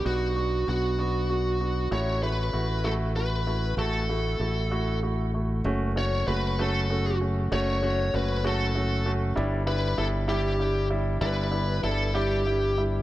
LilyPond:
<<
  \new Staff \with { instrumentName = "Lead electric guitar" } { \time 6/8 \key fis \phrygian \tempo 4. = 65 fis'4 fis'2 | cis''8 b'4 a'8 b'4 | a'2 r4 | r8 cis''8 b'8 a'4 r8 |
cis''4 b'8 a'4 r8 | r8 b'8 a'8 g'4 r8 | b'4 a'8 g'4 r8 | }
  \new Staff \with { instrumentName = "Grand piano" } { \time 6/8 \key fis \phrygian <b d' fis'>8 <b d' fis'>8 <b d' fis'>8 <b d' fis'>8 <b d' fis'>8 <b d' fis'>8 | <a e' fis'>8 <a e' fis'>8 <a e' fis'>8 <a e' fis'>8 <a e' fis'>8 <a e' fis'>8 | <a e' fis'>8 <a e' fis'>8 <a e' fis'>8 <a e' fis'>8 <a e' fis'>8 <a e' fis'>8 | <a cis' fis'>8 <a cis' fis'>8 <a cis' fis'>8 <a cis' fis'>8 <a cis' fis'>8 <a cis' fis'>8 |
<a cis' fis'>8 <a cis' fis'>8 <a cis' fis'>8 <a cis' fis'>8 <a cis' fis'>8 <a cis' fis'>8 | <g d' e'>8 <g d' e'>8 <g d' e'>8 <g d' e'>8 <g d' e'>8 <g d' e'>8 | <g d' e'>8 <g d' e'>8 <g d' e'>8 <g d' e'>8 <g d' e'>8 <g d' e'>8 | }
  \new Staff \with { instrumentName = "Fingered electric bass" } { \clef bass \time 6/8 \key fis \phrygian b,,4 b,,2 | a,,4 a,,2 | a,,4 a,,2 | fis,,4 fis,,2 |
fis,,4 fis,,2 | g,,4 g,,2 | g,,4 g,,2 | }
>>